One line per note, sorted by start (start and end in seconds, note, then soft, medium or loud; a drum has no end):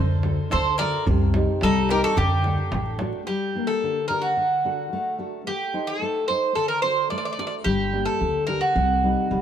0.00 0.36 D2 medium
0.00 0.50 D3 medium
0.23 0.68 D4 soft
0.23 0.69 F#4 soft
0.23 0.69 A4 soft
0.23 darbuka tek medium
0.51 0.91 D2 medium
0.51 1.06 A3 medium
0.51 0.77 A4 medium
0.51 0.78 C5 medium
0.51 darbuka tek medium
0.65 darbuka tek soft
0.78 1.02 D4 soft
0.78 1.02 F#4 soft
0.78 1.02 A4 medium
0.78 1.04 A#4 medium
0.78 1.05 D5 medium
0.78 darbuka tek medium
0.94 darbuka tek soft
1.07 1.45 C2 medium
1.07 1.61 C3 medium
1.07 darbuka dum loud
1.34 1.78 C4 soft
1.34 1.79 D#4 soft
1.34 1.79 G4 medium
1.34 darbuka tek medium
1.61 2.00 C2 medium
1.61 2.16 G3 medium
1.61 1.88 D#4 medium
1.61 1.88 A4 medium
1.61 darbuka tek medium
1.76 darbuka tek soft
1.89 2.12 C4 soft
1.89 2.12 D#4 soft
1.89 2.03 G4 medium
1.89 2.13 G4 medium
1.89 2.03 A#4 medium
1.89 darbuka tek medium
2.04 2.16 F#4 medium
2.04 2.16 A4 medium
2.04 darbuka tek soft
2.17 2.56 D2 loud
2.17 2.46 D3 medium
2.17 2.95 D4 medium
2.17 2.96 G4 medium
2.17 darbuka dum loud
2.44 2.73 A3 soft
2.44 2.89 D4 soft
2.44 2.90 F#5 soft
2.44 darbuka tek medium
2.58 darbuka tek soft
2.72 3.10 A1 medium
2.72 2.99 A3 medium
2.72 darbuka tek medium
2.86 darbuka tek soft
2.99 3.22 A3 soft
2.99 3.22 D4 soft
2.99 3.22 F#4 medium
2.99 darbuka tek medium
3.13 darbuka tek soft
3.27 3.81 G3 medium
3.27 3.69 G4 medium
3.55 3.99 A#3 soft
3.55 3.99 D4 soft
3.55 3.99 G4 soft
3.67 4.07 A4 medium
3.83 4.36 D3 medium
4.08 4.32 D4 soft
4.08 4.31 G4 soft
4.08 4.21 A#4 medium
4.08 4.31 A#4 soft
4.22 5.14 F#4 medium
4.37 4.90 D3 medium
4.65 5.08 D4 soft
4.65 5.09 F#4 soft
4.65 5.09 A4 soft
4.93 5.45 A3 medium
5.18 5.41 D4 soft
5.18 5.41 F#4 soft
5.18 5.41 A4 soft
5.47 6.00 A3 medium
5.47 5.89 G4 medium
5.74 6.18 D#4 soft
5.74 6.18 A4 soft
5.74 6.18 C5 soft
5.87 6.27 A4 medium
6.02 6.55 A3 medium
6.28 6.51 D#4 soft
6.28 6.51 A4 soft
6.28 6.54 C5 medium
6.28 6.52 C5 soft
6.55 7.09 D3 medium
6.55 6.68 A4 medium
6.68 6.82 A#4 medium
6.82 7.28 D4 soft
6.82 7.28 F#4 soft
6.82 7.28 A4 soft
6.82 7.10 C5 medium
7.10 7.65 A3 medium
7.10 7.16 D5 medium
7.18 7.24 D5 medium
7.25 7.31 D5 medium
7.33 7.38 D5 medium
7.38 7.61 D4 soft
7.38 7.61 F#4 soft
7.38 7.61 A4 soft
7.38 7.46 D5 medium
7.47 7.55 D5 medium
7.64 8.05 G1 medium
7.64 8.20 G3 medium
7.64 8.04 G4 medium
7.93 8.38 A#3 soft
7.93 8.37 D4 soft
7.93 8.37 G4 soft
8.05 8.46 A4 medium
8.21 8.59 D2 medium
8.21 8.74 D3 medium
8.47 8.70 D4 soft
8.47 8.70 G4 soft
8.47 8.60 A#4 medium
8.47 8.71 A#4 soft
8.61 9.42 F#4 medium
8.76 9.14 C2 medium
8.76 9.29 C3 medium
9.03 9.29 G3 soft
9.03 9.42 C4 soft
9.03 9.42 D#4 soft
9.30 9.42 C2 medium
9.30 9.42 G3 medium